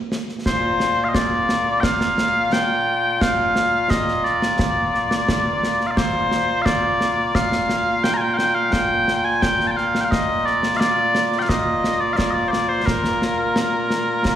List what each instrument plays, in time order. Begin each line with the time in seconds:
0.12 snare
0.29 snare
0.46 bagpipes A#2 A#3 F4 C5, concert bass drum, snare
0.80 snare
1.04 bagpipes F5
1.09 bagpipes D#5
1.15 bagpipes D5, concert bass drum, snare
1.49 snare
1.80 bagpipes F5 G5, concert bass drum, snare
2.01 snare
2.18 snare
2.53 bagpipes G5, snare
3.21 bagpipes F5, concert bass drum, snare
3.56 snare
3.90 bagpipes D#5, concert bass drum, snare
4.08 snare
4.24 bagpipes D5, snare
4.42 snare
4.59 concert bass drum, snare
4.94 snare
5.11 snare
5.29 concert bass drum, snare
5.63 snare
5.81 snare
5.87 bagpipes F5
5.91 bagpipes D5
5.97 bagpipes C5, concert bass drum, snare
6.32 snare
6.62 bagpipes D5 F5
6.66 concert bass drum, snare
7.01 snare
7.35 bagpipes F5, concert bass drum, snare
7.52 snare
7.69 snare
8.04 bagpipes G5, snare
8.14 bagpipes G#5 A#5
8.21 bagpipes G5
8.34 bagpipes F5 G5
8.39 snare
8.55 bagpipes F5
8.73 bagpipes G5, concert bass drum, snare
9.08 snare
9.24 bagpipes G#5
9.42 bagpipes G5, concert bass drum, snare
9.60 snare
9.67 bagpipes G5 A5
9.77 bagpipes F5, snare
9.95 snare
10.01 bagpipes F5 G5
10.11 bagpipes D#5, concert bass drum, snare
10.46 bagpipes D5, snare
10.63 snare
10.77 bagpipes D5 F5, snare
11.15 snare
11.32 snare
11.39 bagpipes F5 G5
11.49 bagpipes D#5, concert bass drum, snare
11.84 snare
12.00 bagpipes D5
12.13 bagpipes D5 F5
12.18 concert bass drum, snare
12.30 bagpipes D5 D#5
12.48 bagpipes C5 D5
12.53 snare
12.69 bagpipes C5
12.86 bagpipes A#4, concert bass drum, snare
13.04 snare
13.22 snare
13.56 snare
13.90 snare
14.25 concert bass drum, snare